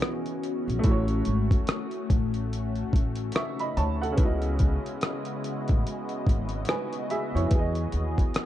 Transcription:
0.00 0.81 E3 medium
0.00 0.83 E3 medium
0.00 0.81 B3 medium
0.00 4.14 C#4 medium
0.00 0.82 E4 soft
0.00 4.14 F#4 medium
0.00 0.86 G#4 medium
0.00 0.86 D#5 medium
0.00 0.80 G#5 medium
0.00 cross-stick loud
0.26 closed hi-hat soft
0.43 closed hi-hat medium
0.68 0.82 A#1 medium
0.68 closed hi-hat medium
0.79 4.11 A3 medium
0.83 1.20 A1 loud
0.83 4.14 A3 medium
0.83 4.13 E4 medium
0.83 kick loud
0.83 closed hi-hat medium
0.87 4.15 F#4 medium
0.91 2.92 C#5 medium
1.08 closed hi-hat medium
1.25 1.48 G#1 loud
1.25 closed hi-hat medium
1.51 kick medium
1.51 closed hi-hat soft
1.67 cross-stick loud
1.67 closed hi-hat medium
1.91 closed hi-hat soft
2.10 2.82 A1 loud
2.10 kick loud
2.10 closed hi-hat medium
2.34 closed hi-hat soft
2.53 closed hi-hat medium
2.75 closed hi-hat soft
2.93 3.29 A1 medium
2.93 kick medium
2.93 closed hi-hat medium
3.15 closed hi-hat medium
3.32 3.58 C#6 medium
3.32 cross-stick loud
3.32 closed hi-hat medium
3.36 3.59 E5 medium
3.59 3.76 D#5 medium
3.59 3.76 B5 medium
3.59 closed hi-hat soft
3.77 4.13 D2 loud
3.77 4.00 C#5 medium
3.77 4.00 A5 medium
3.77 closed hi-hat medium
4.02 4.41 A4 medium
4.02 4.41 F#5 medium
4.02 closed hi-hat medium
4.12 7.45 C#3 medium
4.12 7.46 B3 medium
4.18 4.75 C#2 loud
4.18 7.48 C#3 medium
4.18 7.48 G#3 medium
4.18 8.46 B3 medium
4.18 7.48 E4 medium
4.18 6.64 E4 medium
4.18 8.46 F#4 medium
4.18 8.46 D#5 medium
4.18 kick loud
4.18 closed hi-hat medium
4.22 6.66 F#4 medium
4.22 6.67 D#5 medium
4.42 closed hi-hat medium
4.59 kick medium
4.59 closed hi-hat medium
4.86 closed hi-hat soft
5.01 cross-stick loud
5.01 closed hi-hat medium
5.25 closed hi-hat soft
5.44 closed hi-hat medium
5.68 5.83 A1 medium
5.68 kick medium
5.68 closed hi-hat soft
5.87 closed hi-hat medium
6.09 closed hi-hat soft
6.27 6.62 G#1 medium
6.27 kick medium
6.27 closed hi-hat medium
6.49 closed hi-hat soft
6.65 7.08 G#5 medium
6.65 cross-stick loud
6.65 closed hi-hat medium
6.69 7.08 B4 medium
6.93 closed hi-hat soft
7.10 7.34 G#4 medium
7.10 7.33 E5 medium
7.10 closed hi-hat medium
7.35 7.49 F2 medium
7.35 7.75 E4 medium
7.35 7.74 C#5 medium
7.35 closed hi-hat medium
7.46 8.46 E3 medium
7.51 7.87 E2 loud
7.51 8.46 E3 medium
7.51 8.46 B3 medium
7.51 8.46 G#4 medium
7.51 kick loud
7.51 closed hi-hat medium
7.59 8.46 D#5 medium
7.75 closed hi-hat medium
7.92 8.14 D#2 medium
7.92 closed hi-hat medium
8.18 kick medium
8.18 closed hi-hat soft
8.34 cross-stick loud
8.34 closed hi-hat medium

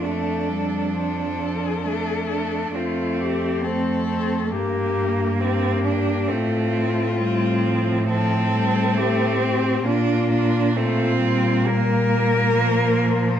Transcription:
0.00 2.74 F2 soft
0.00 0.50 A3 soft
0.00 1.81 D4 soft
0.04 0.93 A4 soft
0.49 0.94 G3 soft
0.93 1.86 F3 soft
0.93 2.72 A4 soft
1.84 2.74 A3 soft
1.84 2.29 D4 soft
2.30 2.77 D4 soft
2.74 4.53 F2 soft
2.74 3.64 A3 soft
2.74 3.65 C4 soft
2.74 3.22 F4 soft
3.20 3.66 G4 soft
3.63 4.55 A3 soft
3.63 4.07 C4 soft
3.63 4.53 A4 soft
4.08 4.52 C4 soft
4.51 6.31 G2 soft
4.51 6.30 A#3 soft
4.51 5.42 A#3 soft
4.51 5.40 G4 soft
5.40 5.84 C4 medium
5.40 6.32 G4 soft
5.84 6.30 D4 soft
6.28 9.84 A2 medium
6.28 7.21 A3 medium
6.28 7.19 C4 soft
6.28 8.09 F4 medium
7.20 7.66 G3 medium
7.20 8.08 C4 medium
7.65 8.09 F3 medium
8.09 8.52 F3 medium
8.09 9.81 C4 medium
8.09 8.99 A4 medium
8.53 8.97 G3 medium
8.95 9.41 A3 medium
8.95 9.87 G4 medium
9.39 9.86 C4 medium
9.84 13.40 A#2 medium
9.84 10.77 A#3 medium
9.84 10.29 D4 medium
9.84 10.76 F4 medium
10.30 10.78 D4 medium
10.76 11.20 A3 medium
10.76 11.68 C4 medium
10.76 11.68 F4 medium
11.21 12.57 G3 medium
11.66 13.40 A#3 medium
11.66 13.40 A#4 medium
12.56 13.40 F3 medium

